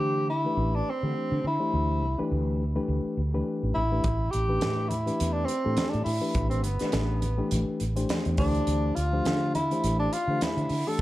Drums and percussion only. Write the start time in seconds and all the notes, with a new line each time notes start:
4.04 kick, closed hi-hat, muted conga
4.33 closed hi-hat, muted conga
4.61 snare, closed hi-hat, high conga
4.91 closed hi-hat, high conga
5.07 closed hi-hat
5.19 closed hi-hat, muted conga
5.48 closed hi-hat
5.77 snare, closed hi-hat, muted conga, high conga
5.93 closed hi-hat
6.06 open hi-hat
6.35 kick, closed hi-hat, muted conga
6.51 closed hi-hat
6.64 closed hi-hat, muted conga
6.79 snare, closed hi-hat
6.92 snare, closed hi-hat, high conga
7.22 closed hi-hat, high conga
7.51 closed hi-hat, muted conga, low conga
7.80 closed hi-hat
7.96 closed hi-hat
8.09 snare, closed hi-hat, muted conga, high conga
8.25 closed hi-hat
8.37 kick, open hi-hat
8.55 closed hi-hat
8.67 closed hi-hat, muted conga
8.96 closed hi-hat, muted conga
9.25 snare, closed hi-hat, high conga
9.55 closed hi-hat, high conga
9.71 closed hi-hat
9.84 closed hi-hat, muted conga
10.13 closed hi-hat
10.41 snare, closed hi-hat, muted conga, high conga
10.58 closed hi-hat
10.69 open hi-hat